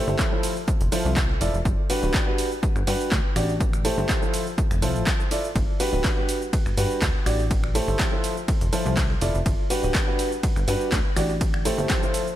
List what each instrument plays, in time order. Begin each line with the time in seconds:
0.08 analog synth bass G1, upright piano A3 E4 G4 A4 C5, shaker
0.19 upright piano F3 E4 G4 A4, finger snap, kick, snare, clap, tambourine, shaker
0.32 upright piano F3 E4 F4 A4 C5
0.43 open hi-hat, tambourine, shaker
0.57 shaker
0.68 kick, tambourine, shaker
0.81 analog synth bass F1, closed hi-hat, shaker
0.92 upright piano F3 E4 F4 A4 C5, open hi-hat, tambourine, shaker
1.05 analog synth bass C2, shaker
1.16 kick, snare, clap, tambourine, shaker
1.29 snare
1.41 analog synth bass F1, upright piano E4 F4 A4 D5, open hi-hat, tambourine, shaker
1.54 analog synth bass F1, shaker
1.65 analog synth bass G1, kick, tambourine, shaker
1.90 upright piano G3 D4 F#4 G4 B4, open hi-hat, tambourine, shaker
2.03 analog synth bass D1, upright piano G3 D4 F#4 G4 B4, shaker
2.14 upright piano G3 D4 F#4 G4 B4, kick, snare, clap, tambourine, shaker
2.27 upright piano G3 D4 F#4 G4 B4
2.38 open hi-hat, tambourine, shaker
2.52 shaker
2.63 kick, tambourine, shaker
2.76 analog synth bass G1, finger snap, shaker
2.87 analog synth bass G2, upright piano G3 D4 F#4 G4 B4, open hi-hat, tambourine, shaker
3.00 shaker
3.12 analog synth bass D2, kick, snare, clap, tambourine, shaker
3.36 analog synth bass A1, upright piano D4 F#4 G4 D5, finger snap, open hi-hat, tambourine, shaker
3.49 snare, shaker
3.60 kick, tambourine, shaker
3.73 finger snap, shaker
3.85 upright piano A3 E4 G4 A4 C5, open hi-hat, tambourine, shaker
3.98 analog synth bass G1, upright piano A3 E4 G4 A4 C5, shaker
4.09 upright piano F3 E4 G4 C5, finger snap, kick, snare, clap, tambourine, shaker
4.22 upright piano F3 E4 F4 A4 C5, shaker
4.34 open hi-hat, tambourine, shaker
4.47 shaker
4.58 kick, tambourine, shaker
4.71 analog synth bass F1, finger snap, closed hi-hat, shaker
4.82 analog synth bass C2, upright piano F3 E4 F4 A4 C5, open hi-hat, tambourine, shaker
4.95 analog synth bass A1, shaker
5.07 kick, snare, clap, tambourine, shaker
5.20 snare, shaker
5.31 upright piano E4 F4 A4 D5, open hi-hat, tambourine, shaker
5.44 shaker
5.56 analog synth bass G1, kick, ride, tambourine, shaker
5.80 upright piano G3 D4 F#4 G4 B4, open hi-hat, tambourine, shaker
5.93 analog synth bass D1, upright piano G3 D4 F#4 G4 B4, shaker
6.04 kick, snare, clap, ride, tambourine, shaker
6.17 upright piano G3 D4 F#4 G4 B4
6.29 open hi-hat, tambourine, shaker
6.42 shaker
6.53 kick, ride, tambourine, shaker
6.66 analog synth bass G1, finger snap, shaker
6.77 analog synth bass G2, upright piano G3 D4 F#4 G4 B4, open hi-hat, tambourine, shaker
6.91 shaker
7.02 analog synth bass D2, kick, snare, clap, ride, tambourine, shaker
7.26 analog synth bass A1, upright piano D4 F#4 G4 D5, finger snap, open hi-hat, tambourine, shaker
7.39 snare, shaker
7.51 kick, ride, tambourine, shaker
7.64 finger snap
7.75 upright piano A3 E4 G4 A4 C5, open hi-hat, tambourine, shaker
7.88 analog synth bass G1, upright piano A3 E4 G4 A4 C5, shaker
7.99 upright piano F3 E4, finger snap, kick, snare, clap, ride, tambourine, shaker
8.12 upright piano F3 E4 F4 A4 C5
8.24 open hi-hat, tambourine, shaker
8.37 shaker
8.48 kick, ride, tambourine, shaker
8.61 analog synth bass F1, closed hi-hat, shaker
8.73 upright piano F3 E4 F4 A4 C5, open hi-hat, tambourine, shaker
8.86 analog synth bass C2, shaker
8.97 kick, snare, clap, ride, tambourine, shaker
9.10 snare
9.21 analog synth bass F1, upright piano E4 F4 A4 D5, open hi-hat, tambourine, shaker
9.34 analog synth bass F1, shaker
9.46 analog synth bass G1, kick, ride, tambourine, shaker
9.70 upright piano G3 D4 F#4 G4 B4, open hi-hat, tambourine, shaker
9.83 analog synth bass D1, upright piano G3 D4 F#4 G4 B4, shaker
9.95 upright piano G3 D4 F#4 G4 B4, kick, snare, clap, ride, tambourine, shaker
10.08 upright piano G3 D4 F#4 G4 B4
10.19 open hi-hat, tambourine, shaker
10.32 shaker
10.43 kick, ride, tambourine, shaker
10.56 analog synth bass G1, finger snap, shaker
10.68 analog synth bass G2, upright piano G3 D4 F#4 G4 B4, open hi-hat, tambourine, shaker
10.81 shaker
10.92 analog synth bass D2, kick, snare, clap, ride, tambourine, shaker
11.16 analog synth bass A1, upright piano D4 F#4 G4 D5, finger snap, open hi-hat, tambourine, shaker
11.29 snare, shaker
11.41 kick, ride, tambourine, shaker
11.54 finger snap
11.65 upright piano A3 E4 G4 A4 C5, open hi-hat, tambourine, shaker
11.78 analog synth bass G1, upright piano A3 E4 G4 A4 C5, shaker
11.90 upright piano F3 E4 G4 A4 C5, finger snap, kick, snare, clap, ride, tambourine, shaker
12.03 upright piano F3 E4 F4 A4 C5, shaker
12.14 open hi-hat, tambourine, shaker
12.27 shaker